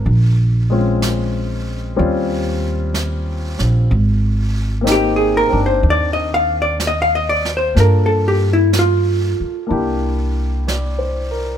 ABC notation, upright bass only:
X:1
M:4/4
L:1/8
Q:"Swing" 1/4=62
K:Ablyd
V:1 name="Upright bass" clef=bass
B,,,4 E,,3 B,,, | A,,,3 G,,, E,,4 | G,,3 z C,,4 |]